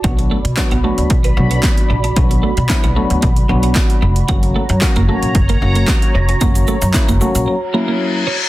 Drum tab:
HH |xx-xxx-xxx-xxx-x|xx-xxx-xxx-xxx-x|xx-xxx-xxx-xxx-x|xx-xxx-x--------|
SH |----------------|----------------|----------------|xxxxxxxx--------|
CP |----x-------x---|----x-------x---|----x-------x---|----x-----------|
SD |----o-------o---|----o-------o---|----o-------o---|----o-----------|
BD |o---o---o---o---|o---o---o---o---|o---o---o---o---|o---o-----------|